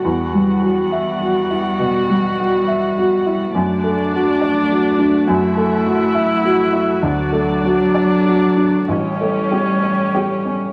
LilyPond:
<<
  \new Staff \with { instrumentName = "String section" } { \time 4/4 \key d \major \tempo 4 = 69 << { fis''1 | d''2 e''2 | d''2 cis''2 | } \\ { <g b>1 | <a fis'>1~ | <a fis'>2 <a g'>2 | } >> }
  \new Staff \with { instrumentName = "Upright piano" } { \time 4/4 \key d \major \tuplet 3/2 { e,8 g8 fis'8 e''8 fis'8 e'8 b,8 g8 fis'8 e''8 fis'8 e'8 } | \tuplet 3/2 { fis,8 a8 fis'8 d''8 fis'8 d'8 fis,8 a8 fis'8 e''8 fis'8 e'8 } | \tuplet 3/2 { d,8 a8 fis'8 d''8 fis'8 d'8 a,,8 a8 g'8 cis''8 g'8 cis'8 } | }
  \new Staff \with { instrumentName = "Viola" } { \time 4/4 \key d \major fis'1 | d'2 e'2 | d'2 cis'2 | }
  \new Staff \with { instrumentName = "Cello" } { \clef bass \time 4/4 \key d \major g1 | a1 | fis2 g2 | }
>>